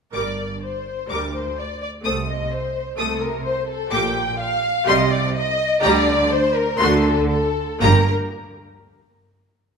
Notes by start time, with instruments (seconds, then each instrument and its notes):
0.14 double bass section G1, cello section G2, viola section G3 A#4, violin section D5 D6
0.63 violin section C5
1.10 double bass section D2, cello section D2, viola section G3 A#4, violin section A#4 D6
1.34 violin section C5
1.58 violin section D5
1.81 violin section D5
2.04 double bass section C2, cello section C3, viola section A3 A4, violin section C5 D#6
2.27 violin section D#5
2.52 violin section C5
2.98 double bass section C2, cello section C3, viola section A3 A4, violin section A4 D#6
3.22 violin section A#4
3.45 violin section C5
3.69 violin section A4
3.92 double bass section A#1, cello section A#2, viola section A#3 G4, violin section G5 D6
4.40 violin section F5
4.86 double bass section C2, cello section C3, viola section G3 G4, violin section D#5 C6
5.11 violin section D5
5.35 violin section D#5
5.83 double bass section D2, cello section D3, viola section G3 G4, violin section D5 A#5
6.31 violin section C5
6.56 violin section A#4
6.80 double bass section D2, cello section D3, viola section A3 F#4, violin section A4 C6
7.30 violin section A4
7.81 double bass section G1, cello section G2, viola section A#3 G4, violin section A#4 A#5